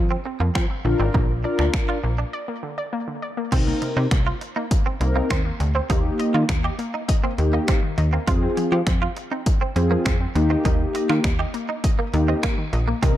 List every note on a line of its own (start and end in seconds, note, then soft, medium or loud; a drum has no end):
0.00 0.16 F3 loud
0.11 0.19 C4 medium
0.25 0.35 C4 medium
0.25 muted clean electric guitar stroke soft
0.40 0.51 F2 medium
0.40 0.50 F3 medium
0.40 0.49 A#3 medium
0.55 0.66 F3 loud
0.55 0.64 C4 medium
0.55 0.65 F5 medium
0.55 finger snap loud
0.55 kick loud
0.70 0.80 C4 medium
0.84 0.95 A#1 loud
0.84 0.95 D3 medium
0.84 1.32 D4 medium
0.84 1.32 F4 medium
0.84 1.32 A#4 loud
0.84 muted clean electric guitar stroke soft
0.99 1.10 G#1 loud
0.99 1.08 C4 medium
0.99 1.10 D5 medium
1.14 1.46 A#1 loud
1.14 1.23 A#3 medium
1.14 1.24 A#3 medium
1.14 kick loud
1.44 1.98 D4 medium
1.44 1.98 F4 medium
1.44 1.99 A#4 loud
1.44 1.54 D5 medium
1.44 muted clean electric guitar stroke soft
1.59 1.69 D2 medium
1.59 1.69 A#3 medium
1.59 1.68 D4 medium
1.59 finger snap medium
1.74 finger snap loud
1.74 kick loud
1.89 1.97 F4 medium
1.89 1.99 D5 medium
2.04 2.24 A#1 medium
2.04 2.14 A#3 medium
2.04 muted clean electric guitar stroke soft
2.18 2.27 D4 medium
2.33 2.43 D5 loud
2.48 2.58 A#3 medium
2.63 2.73 D3 medium
2.78 2.88 D5 medium
2.93 3.03 A#3 medium
3.08 3.18 D3 medium
3.22 3.32 D5 medium
3.37 3.47 A#3 medium
3.52 3.73 C2 loud
3.52 4.06 C4 medium
3.52 3.61 C4 medium
3.52 4.06 D#4 medium
3.52 4.07 A#4 medium
3.52 3.62 C5 loud
3.52 kick loud
3.52 closed hi-hat medium
3.52 crash medium
3.67 3.77 A#3 medium
3.82 3.92 C3 medium
3.82 muted clean electric guitar stroke soft
3.82 closed hi-hat medium
3.97 4.07 C3 medium
3.97 4.05 D#4 medium
3.97 4.07 C5 medium
4.11 4.32 C2 medium
4.11 4.22 A#3 medium
4.11 finger snap loud
4.11 kick loud
4.11 closed hi-hat medium
4.27 4.35 F4 medium
4.41 muted clean electric guitar stroke soft
4.41 closed hi-hat soft
4.56 4.66 A#3 medium
4.56 4.65 D#4 medium
4.71 kick loud
4.71 closed hi-hat medium
4.86 4.95 C4 medium
5.00 5.21 C2 loud
5.00 5.11 A#3 medium
5.00 5.41 C4 medium
5.00 5.41 D#4 medium
5.00 5.41 A#4 medium
5.00 muted clean electric guitar stroke soft
5.00 closed hi-hat soft
5.16 5.26 C3 medium
5.16 5.24 A#3 medium
5.30 5.51 D#2 medium
5.30 5.39 C4 medium
5.30 5.40 C5 medium
5.30 finger snap loud
5.30 kick loud
5.30 closed hi-hat medium
5.45 5.55 A#3 medium
5.60 5.81 D2 medium
5.60 5.70 C3 medium
5.60 muted clean electric guitar stroke soft
5.60 closed hi-hat soft
5.75 5.84 C4 medium
5.75 5.85 C5 medium
5.89 6.11 D#2 loud
5.89 6.44 A#3 medium
5.89 6.00 A#3 medium
5.89 6.44 D#4 medium
5.89 5.98 D#4 medium
5.89 6.44 G4 medium
5.89 kick loud
5.89 closed hi-hat medium
6.19 6.29 D#5 medium
6.19 muted clean electric guitar stroke soft
6.19 closed hi-hat medium
6.34 6.45 D#3 medium
6.34 6.44 A#3 medium
6.34 6.43 F4 medium
6.49 6.70 D#2 loud
6.49 finger snap loud
6.49 kick loud
6.49 closed hi-hat medium
6.64 6.73 G4 medium
6.64 6.74 D#5 medium
6.79 6.89 A#3 medium
6.79 muted clean electric guitar stroke soft
6.79 closed hi-hat soft
6.94 7.03 D#4 medium
7.08 7.18 D#5 loud
7.08 kick loud
7.08 closed hi-hat medium
7.23 7.33 A#3 medium
7.23 7.32 C4 medium
7.38 7.59 D#2 medium
7.38 7.48 D#3 medium
7.38 7.79 A#3 medium
7.38 7.79 D#4 medium
7.38 7.79 G4 medium
7.38 muted clean electric guitar stroke soft
7.38 closed hi-hat soft
7.53 7.62 A#3 medium
7.53 7.63 D#5 medium
7.68 7.78 A#3 medium
7.68 7.77 C4 medium
7.68 finger snap loud
7.68 kick loud
7.68 closed hi-hat medium
7.83 7.93 D#3 medium
7.98 8.18 D#2 loud
7.98 8.08 D#5 medium
7.98 muted clean electric guitar stroke soft
7.98 closed hi-hat medium
8.13 8.23 A#3 medium
8.13 8.21 C4 medium
8.27 8.48 F2 loud
8.27 8.81 C4 medium
8.27 8.82 F4 medium
8.27 8.36 F4 medium
8.27 8.82 G#4 loud
8.27 8.37 F5 medium
8.27 kick loud
8.27 closed hi-hat medium
8.42 8.52 C4 medium
8.57 8.67 F3 medium
8.57 muted clean electric guitar stroke soft
8.57 closed hi-hat medium
8.72 8.82 F3 medium
8.72 8.81 G4 medium
8.72 8.82 F5 medium
8.87 9.07 F2 medium
8.87 8.97 C4 medium
8.87 finger snap loud
8.87 kick loud
8.87 closed hi-hat medium
9.02 9.10 F4 medium
9.17 muted clean electric guitar stroke soft
9.17 closed hi-hat soft
9.31 9.41 C4 medium
9.31 9.40 D#4 medium
9.46 kick loud
9.46 closed hi-hat medium
9.61 9.70 C4 medium
9.76 9.97 F2 medium
9.76 10.16 C4 medium
9.76 9.86 C4 medium
9.76 10.17 F4 medium
9.76 10.17 G#4 loud
9.76 muted clean electric guitar stroke soft
9.76 closed hi-hat soft
9.91 10.01 F3 medium
9.91 9.99 A#3 medium
10.06 10.27 F2 medium
10.06 10.14 C4 medium
10.06 10.16 F5 medium
10.06 finger snap loud
10.06 kick loud
10.06 closed hi-hat medium
10.20 10.30 C4 medium
10.35 10.56 D#2 loud
10.35 10.45 D#3 medium
10.35 11.30 A#3 medium
10.35 11.30 D#4 medium
10.35 11.31 G4 loud
10.35 muted clean electric guitar stroke soft
10.35 closed hi-hat soft
10.50 10.59 C4 medium
10.50 10.60 D#5 medium
10.65 10.86 D#2 loud
10.65 10.75 A#3 medium
10.65 10.74 D#4 medium
10.65 kick loud
10.65 closed hi-hat medium
10.95 11.05 D#5 medium
10.95 muted clean electric guitar stroke soft
10.95 closed hi-hat medium
11.09 11.20 D#3 medium
11.09 11.20 A#3 medium
11.09 11.18 F4 medium
11.09 finger snap medium
11.24 11.45 D#2 medium
11.24 finger snap loud
11.24 kick loud
11.24 closed hi-hat medium
11.39 11.48 G4 medium
11.39 11.49 D#5 medium
11.54 11.64 A#3 medium
11.54 muted clean electric guitar stroke soft
11.54 closed hi-hat soft
11.69 11.78 D#4 medium
11.84 11.94 D#5 loud
11.84 kick loud
11.84 closed hi-hat medium
11.99 12.09 A#3 medium
11.99 12.07 A#3 medium
12.13 12.34 D#2 loud
12.13 12.23 D#3 medium
12.13 12.54 A#3 medium
12.13 12.54 D#4 medium
12.13 12.54 G4 medium
12.13 muted clean electric guitar stroke soft
12.13 closed hi-hat soft
12.28 12.37 C4 medium
12.28 12.38 D#5 medium
12.43 12.53 A#3 medium
12.43 12.52 A#3 medium
12.43 finger snap loud
12.43 kick loud
12.43 closed hi-hat medium
12.58 12.68 D#3 medium
12.73 12.94 A#1 loud
12.73 12.83 D#5 medium
12.73 muted clean electric guitar stroke soft
12.73 closed hi-hat medium
12.88 12.96 A#3 medium
12.88 12.98 A#3 medium
13.02 13.17 C2 loud
13.02 13.17 C4 medium
13.02 13.11 C4 medium
13.02 13.17 D#4 medium
13.02 13.17 A#4 loud
13.02 13.12 D#5 medium
13.02 kick loud
13.02 closed hi-hat medium